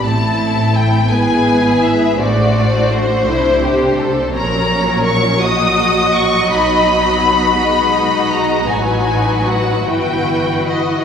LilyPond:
<<
  \new Staff \with { instrumentName = "Violin section" } { \time 6/8 \key a \dorian \tempo 4. = 55 a''4 g''8 gis''4 e''8 | d''4 c''4. r8 | \key b \major ais''4 cis'''8 dis'''4 cis'''8 | b''2~ b''8 ais''8 |
gis''4 fis''8 g''4 dis''8 | }
  \new Staff \with { instrumentName = "Violin section" } { \time 6/8 \key a \dorian << { a'4. b'4. | c''2. | \key b \major cis''4. dis''4.~ | dis''4. dis''4. |
b'4. b'4. | } \\ { e'4. gis'4. | fis'4. e'8 g'8 a'8 | ais'4. fis'4. | fis'2.~ |
fis'2. | } >> }
  \new Staff \with { instrumentName = "Viola section" } { \time 6/8 \key a \dorian << { c'4. e'4. | d'2. | \key b \major cis'4. fis'4. | dis'4. dis'4. |
dis'4. e'4. | } \\ { c'4. b4. | a2. | fis4. fis4.~ | fis4. gis4. |
fis4. e4. | } >> }
  \new Staff \with { instrumentName = "Cello section" } { \clef bass \time 6/8 \key a \dorian a,4. gis,4. | a,4. c4. | \key b \major ais,2. | b,2. |
a,4. g,4. | }
  \new Staff \with { instrumentName = "Double bass section" } { \clef bass \time 6/8 \key a \dorian a,,4. gis,,4. | a,,4. c,4. | \key b \major ais,,2. | b,,2. |
a,,4. g,,4. | }
>>